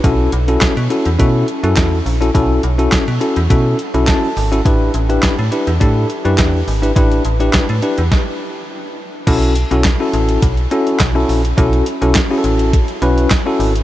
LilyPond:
<<
  \new Staff \with { instrumentName = "Tine electric piano" } { \time 4/4 \key b \minor \tempo 4 = 104 << { r1 | r2. a''4 | r1 | r1 |
r1 | r1 | } \\ { <cis' e' fis' a'>8 r16 <cis' e' fis' a'>8 r16 <cis' e' fis' a'>16 r16 <cis' e' fis' a'>8 r16 <cis' e' fis' a'>8 r8 <cis' e' fis' a'>16 | <cis' e' fis' a'>8 r16 <cis' e' fis' a'>8 r16 <cis' e' fis' a'>16 r16 <cis' e' fis' a'>8 r16 <cis' e' fis' a'>8 r8 <cis' e' fis' a'>16 | <d' e' g' b'>8 r16 <d' e' g' b'>8 r16 <d' e' g' b'>16 r16 <d' e' g' a'>8 r16 <d' e' g' b'>8 r8 <d' e' g' b'>16 | <d' e' g' b'>8 r16 <d' e' g' b'>8 r16 <d' e' g' b'>16 r2 r16 |
<cis' e' fis' a'>8 r16 <cis' e' fis' a'>16 r16 <cis' e' fis' a'>8. r8 <cis' e' fis' a'>8 r16 <cis' e' fis' a'>8 r16 | <cis' e' fis' a'>8 r16 <cis' e' fis' a'>16 r16 <cis' e' fis' gis' a'>8. r8 <cis' e' fis' b'>8 r16 <cis' e' fis' a'>8 r16 | } >> }
  \new Staff \with { instrumentName = "FM bass" } { \clef bass \time 4/4 \key b \minor b,,8 b,,8 b,16 b,16 r16 e,16 b,8 r16 fis,16 e,8 ais,,8 | b,,8 b,,8 b,16 b,16 r16 e,16 b,8 r16 b,,16 r8 gis,,8 | a,,8 a,,8 a,16 a,16 r16 e,16 a,8 r16 fis,16 e,8 gis,,8 | a,,8 a,,8 a,16 a,16 r16 e,16 r2 |
b,,8. b,,8 r16 a,,8 b,,8 r8 b,,8 ais,,8 | b,,8 r16 b,,16 r8 a,,8. r16 b,,8 r8 gis,,8 | }
  \new DrumStaff \with { instrumentName = "Drums" } \drummode { \time 4/4 <hh bd>8 hh16 hh16 <hc hh bd sn>16 hh16 hh16 hh16 <hh bd>8 hh16 hh16 <hc hh bd sn>8 hho16 hh16 | <hh bd>8 hh16 hh16 <hc hh bd sn>16 hh16 hh16 hh16 <hh bd>8 hh16 hh16 <hc hh bd sn>8 hho16 hh16 | <hh bd>8 hh16 hh16 <hc hh bd sn>16 hh16 hh16 hh16 <hh bd>8 hh16 hh16 <hc hh bd sn>8 hho16 hh16 | <hh bd>16 hh16 hh16 hh16 <hc hh bd sn>16 hh16 hh16 hh16 <bd sn>4 r4 |
<cymc hh bd>16 hh16 hh16 hh16 <hc hh bd sn>8 hh16 hh16 <hh bd>16 hh16 hh16 hh16 <hc hh bd sn>8 hho16 hh16 | <hh bd>16 hh16 hh16 hh16 <hc hh bd sn>8 hh16 hh16 <hh bd>16 hh16 hh16 hh16 <hc hh bd sn>8 hho16 hh16 | }
>>